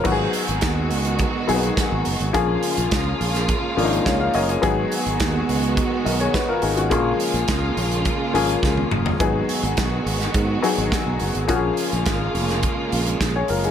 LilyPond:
<<
  \new Staff \with { instrumentName = "Grand piano" } { \time 4/4 \key gis \dorian \tempo 4 = 105 << { <eis' ais'>16 r2. r8. | r2 r8 gis''8 <gis' cis'' eis''>16 <ais' eis''>16 <ais' cis'' dis''>16 <gis' cis''>16~ | <gis' cis''>16 r2 r16 <ais' dis''>16 <gis' cis''>16 <fis' b'>16 <eis' ais'>16 <dis' gis'>16 <cis' fis'>16~ | <cis' fis'>16 r2. r8. |
r1 | r2. r16 <gis' cis''>16 <eis' ais'>16 <dis' gis'>16 | } \\ { <fis b dis' fis' gis'>4 r4. <fis ais b dis' gis'>4 r8 | <eis ais cis' gis'>4 r4. <eis ais cis' d' dis'>4 r8 | <fis b dis' gis'>4 r2. | <eis ais cis' gis'>4 r4. <eis ais cis' gis'>4 r8 |
<fis b dis' gis'>4 r4. <fis b dis' gis'>4 r8 | <eis ais cis' fis' gis'>4 r2. | } >> }
  \new Staff \with { instrumentName = "String section" } { \time 4/4 \key gis \dorian << { <dis b fis'>1 | <cis ais eis'>1 | <dis b fis'>1 | <cis ais eis'>1 |
<dis b fis'>1 | <cis ais eis'>1 | } \\ { gis1 | gis1~ | gis1~ | gis1~ |
gis1 | gis1 | } >> }
  \new Staff \with { instrumentName = "Fingered electric bass" } { \clef bass \time 4/4 \key gis \dorian gis,,8 r16 gis,,16 dis,8 cis,8. r16 b,,8 r16 gis,,16 fis,,16 gis,,16 | ais,,8 r16 ais,,16 cis,8 ais,,8. r16 gis,,8 cis,8 fis,,8 | gis,,8 r16 gis,,16 dis,8 cis,8. r16 b,,8 r8 gis,,8 | ais,,8 r16 ais,,16 cis,8 ais,,8. r16 gis,,8 cis,8 fis,,8 |
gis,,8 r16 gis,,16 b,,8 gis,,8 gis,8 r16 gis,,16 r16 b,,16 fis,,16 gis,,16 | ais,,8 r16 ais,,16 gis,,8 eis,,8. r16 ais,,8 ais,,8 fis,,8 | }
  \new DrumStaff \with { instrumentName = "Drums" } \drummode { \time 4/4 <cymc bd>8 hho16 hh16 <hh bd sn>8 hho16 hh16 <hh bd>8 hho16 hh16 <hh bd sn>8 hho16 hh16 | <hh bd>8 hho16 hh16 <hh bd sn>8 hho16 <hh sn>16 <hh bd>8 hho16 hh16 <hh bd sn>8 hho16 hh16 | <hh bd>8 hho16 hh16 <hh bd sn>8 hho16 hh16 <hh bd>8 hho16 hh16 <hh bd sn>8 hho16 hh16 | <hh bd>8 hho16 hh16 <hh bd sn>8 hho16 hh16 <hh bd>8 hho16 hh16 <bd sn>16 tommh16 toml16 tomfh16 |
<hh bd>8 hho16 hh16 <hh bd sn>8 hho16 <hh sn>16 <hh bd>8 hho16 hh16 <hh bd sn>8 hho16 hh16 | <hh bd>8 hho16 hh16 <hh bd sn>8 hho16 <hh sn>16 <hh bd>8 hho16 hh16 <hh bd sn>8 hho16 hh16 | }
>>